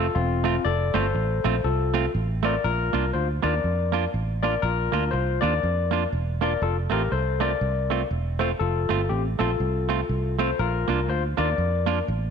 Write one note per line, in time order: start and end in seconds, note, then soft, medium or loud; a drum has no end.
0.00 0.12 F4 medium
0.00 0.16 A4 medium
0.15 0.57 E1 loud
0.15 0.62 C4 medium
0.15 0.66 F4 medium
0.44 0.55 A3 medium
0.44 0.56 C4 loud
0.44 0.56 F4 medium
0.65 0.90 F1 medium
0.65 0.93 A4 medium
0.65 0.95 D5 loud
0.94 1.12 G1 medium
0.94 1.05 A3 medium
0.94 1.05 C4 medium
0.94 1.06 F4 medium
0.94 1.61 A4 medium
0.94 1.66 C5 loud
1.14 1.40 A1 medium
1.14 muted clean electric guitar stroke soft
1.44 1.62 A#1 loud
1.44 1.55 A3 medium
1.44 1.55 C4 medium
1.44 1.56 F4 medium
1.64 2.06 C2 loud
1.64 2.11 F4 medium
1.64 2.10 A4 medium
1.94 2.05 A3 medium
1.94 2.05 C4 loud
1.94 2.05 F4 medium
2.15 2.57 A1 medium
2.43 2.54 A3 medium
2.43 2.55 C4 medium
2.43 2.55 F4 medium
2.43 2.63 A#4 medium
2.43 2.65 D5 medium
2.64 2.89 A#1 loud
2.64 3.11 F4 medium
2.64 3.10 A#4 loud
2.93 3.11 C2 medium
2.93 3.04 A#3 medium
2.93 3.04 D4 medium
2.93 3.05 F4 medium
3.13 3.39 D2 medium
3.13 3.28 F4 medium
3.13 3.27 C5 medium
3.13 muted clean electric guitar stroke soft
3.42 3.60 D#2 medium
3.42 3.54 A#3 medium
3.42 3.54 D4 medium
3.42 3.54 F4 medium
3.42 4.10 A#4 medium
3.42 4.09 D5 medium
3.64 4.06 F2 medium
3.92 4.03 A#3 medium
3.92 4.04 D4 medium
3.92 4.04 F4 medium
4.14 4.56 A1 medium
4.43 4.54 A#3 medium
4.43 4.54 D4 medium
4.43 4.54 F4 medium
4.43 4.61 A#4 medium
4.43 4.63 D5 medium
4.62 4.88 A#1 loud
4.62 5.10 F4 medium
4.62 5.13 A#4 loud
4.92 5.09 D2 medium
4.92 5.03 A#3 medium
4.92 5.03 D4 medium
4.92 5.04 F4 medium
5.11 5.38 C2 medium
5.11 5.41 F4 medium
5.11 5.39 C5 medium
5.11 muted clean electric guitar stroke soft
5.41 5.59 D#2 medium
5.41 5.53 A#3 medium
5.41 5.53 D4 loud
5.41 5.53 F4 loud
5.41 6.09 A#4 medium
5.41 6.07 D5 medium
5.63 6.05 F2 medium
5.91 6.02 A#3 medium
5.91 6.03 D4 medium
5.91 6.03 F4 medium
6.12 6.54 E1 medium
6.41 6.52 A#3 medium
6.41 6.52 D4 medium
6.41 6.53 F4 medium
6.41 6.61 A#4 medium
6.41 6.62 D5 medium
6.62 6.87 F1 loud
6.62 6.77 F4 medium
6.62 6.76 A4 loud
6.90 7.08 A1 medium
6.90 7.01 A3 medium
6.90 7.02 C4 medium
6.90 7.02 F4 loud
6.90 7.11 G4 medium
6.90 7.12 A#4 medium
7.11 7.54 C2 medium
7.11 7.40 A4 medium
7.11 7.42 C5 medium
7.11 muted clean electric guitar stroke soft
7.40 7.51 A3 medium
7.40 7.51 C4 medium
7.40 7.52 F4 medium
7.40 8.07 A#4 medium
7.40 8.06 D5 medium
7.61 8.03 C2 medium
7.90 8.01 A3 medium
7.90 8.01 C4 medium
7.90 8.02 F4 medium
8.11 8.53 E1 medium
8.39 8.50 A3 medium
8.39 8.51 C4 medium
8.39 8.51 F4 medium
8.39 8.50 A4 medium
8.39 8.48 C5 medium
8.59 8.85 F1 loud
8.59 9.07 F4 medium
8.59 9.11 A4 medium
8.89 9.07 G1 medium
8.89 9.00 A3 medium
8.89 9.01 C4 medium
8.89 9.01 F4 loud
9.09 9.35 A1 medium
9.09 9.24 C4 medium
9.09 9.23 G4 medium
9.09 muted clean electric guitar stroke soft
9.39 9.57 A#1 medium
9.39 9.50 A3 medium
9.39 9.50 C4 medium
9.39 9.51 F4 medium
9.39 10.36 F4 medium
9.39 10.35 A4 medium
9.60 10.02 C2 medium
9.89 10.00 A3 medium
9.89 10.00 C4 medium
9.89 10.00 F4 medium
10.09 10.51 C2 medium
10.39 10.49 A3 medium
10.39 10.50 C4 medium
10.39 10.50 F4 medium
10.39 10.58 A4 medium
10.39 10.60 C5 medium
10.59 10.84 A#1 loud
10.59 11.06 F4 medium
10.59 11.10 A#4 loud
10.88 11.05 C2 medium
10.88 10.99 A#3 medium
10.88 10.99 D4 medium
10.88 11.00 F4 loud
11.08 11.34 D2 medium
11.08 11.23 F4 medium
11.08 11.23 C5 medium
11.08 muted clean electric guitar stroke soft
11.37 11.55 D#2 medium
11.37 11.49 A#3 medium
11.37 11.49 D4 medium
11.37 11.49 F4 loud
11.37 12.05 A#4 medium
11.37 12.04 D5 loud
11.58 12.00 F2 medium
11.86 11.98 A#3 medium
11.86 11.98 D4 medium
11.86 11.98 F4 medium
12.08 12.30 A1 loud